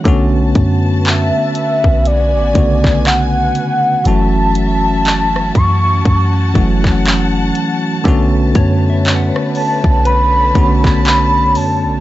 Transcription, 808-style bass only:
X:1
M:4/4
L:1/16
Q:"Swing 16ths" 1/4=60
K:Bdor
V:1 name="808-style bass" clef=bass
B,,,2 F,,3 z2 B,,,2 A,,, B,,,4 z2 | F,,,6 F,,2 F,,2 F,,,4 z2 | B,,,2 F,,3 z2 B,,,3 B,,,4 F,, B,,, |]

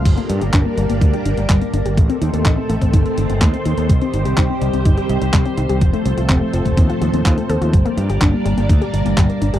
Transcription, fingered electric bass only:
X:1
M:4/4
L:1/16
Q:1/4=125
K:Gm
V:1 name="Fingered electric bass" clef=bass
G,,, z G,, G,,, G,,, z G,,, z D,, z G,,, G,,, G,,, z G,,, G,,, | A,,, z E,, E,, A,,, z A,,, A,,, G,,, z G,,, G,,, E,, z E,, E,, | C,, z G,,, C,, C,, z C,, C,, G,,, z C,, C,, C,, z C,, C,, | F,,, z C,, C,, F,,, z F,,, F,,, E,, z E,, E,, E,, z E,, E,, |
G,,, z G,, G,,, G,,, z G,,, G,,, D,, z G,,, G,,, G,,, z G,,, G,,, |]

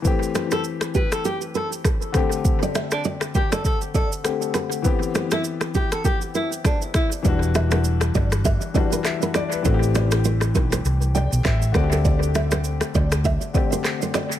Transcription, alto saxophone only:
X:1
M:4/4
L:1/16
Q:"Swing 16ths" 1/4=100
K:Em
V:1 name="Alto saxophone"
z3 A z2 B A G z A z4 z | z3 D z2 G A A z A z4 z | z3 E z2 G A G z E z D z E z | z16 |
z16 | z16 |]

